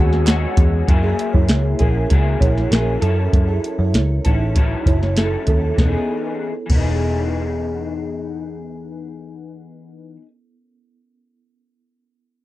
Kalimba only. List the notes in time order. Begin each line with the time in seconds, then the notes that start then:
1.03 G#4 E5
1.33 E4 C#5
1.80 C#4 A#4
2.41 E4 C#5
2.71 C#4 A#4
3.01 C#4 A4
3.48 G#4 E5
3.79 E4 C#5
4.25 D#4 B4
4.86 E4 C#5
5.18 C#4 A4
5.48 C#4 A4
5.78 B3
6.70 B3